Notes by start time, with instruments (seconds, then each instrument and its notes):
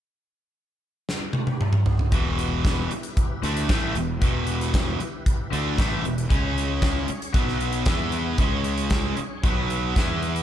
1.09 snare
1.33 high tom
1.47 high tom
1.61 mid tom
1.73 mid tom
1.86 floor tom
1.99 floor tom
2.11 picked electric bass E1, overdriven electric guitar E2 B2 E3, tonewheel organ E4 G4 B4, kick, closed hi-hat
2.39 closed hi-hat
2.65 kick, snare, closed hi-hat
2.91 muted overdriven electric guitar stroke, muted picked electric bass stroke, closed hi-hat
3.03 closed hi-hat
3.17 kick, closed hi-hat
3.42 picked electric bass D2, overdriven electric guitar D3 A3 D4, closed hi-hat
3.57 closed hi-hat
3.68 picked electric bass A1, overdriven electric guitar A2 E3 A3, kick, snare, closed hi-hat
3.95 picked electric bass E1, overdriven electric guitar E2 B2, closed hi-hat
4.21 picked electric bass E1, overdriven electric guitar E2 B2 E3, kick, closed hi-hat
4.47 closed hi-hat
4.61 closed hi-hat
4.74 kick, snare, closed hi-hat
4.99 muted overdriven electric guitar stroke, muted picked electric bass stroke, closed hi-hat
5.26 kick, closed hi-hat
5.51 picked electric bass D2, overdriven electric guitar D3 A3 D4, closed hi-hat
5.78 picked electric bass A1, overdriven electric guitar A2 E3 A3, kick, snare, closed hi-hat
6.02 picked electric bass E1, overdriven electric guitar E2 B2, closed hi-hat
6.18 closed hi-hat
6.29 picked electric bass C#2, overdriven electric guitar C#3 G#3 C#4, tonewheel organ C#4 G#4 C#5, kick, closed hi-hat
6.58 closed hi-hat
6.82 kick, snare, closed hi-hat
7.07 muted overdriven electric guitar stroke, muted picked electric bass stroke, closed hi-hat
7.22 closed hi-hat
7.33 picked electric bass B1, overdriven electric guitar B2 F#3 B3, tonewheel organ B3 F#4 B4, kick, closed hi-hat
7.48 snare
7.60 closed hi-hat
7.73 closed hi-hat
7.86 picked electric bass E2, overdriven electric guitar E3 B3 E4, tonewheel organ B3 E4 B4, kick, snare, closed hi-hat
8.12 closed hi-hat
8.38 picked electric bass C#2, overdriven electric guitar C#3 G#3 C#4, tonewheel organ C#4 G#4 C#5, kick, closed hi-hat
8.64 closed hi-hat
8.78 closed hi-hat
8.90 kick, snare, closed hi-hat
9.17 muted overdriven electric guitar stroke, muted picked electric bass stroke, closed hi-hat
9.43 picked electric bass B1, overdriven electric guitar B2 F#3 B3, tonewheel organ B3 F#4 B4, kick, closed hi-hat
9.70 closed hi-hat
9.96 picked electric bass E2, overdriven electric guitar E3 B3 E4, tonewheel organ B3 E4 B4, kick, snare, closed hi-hat
10.23 closed hi-hat
10.36 closed hi-hat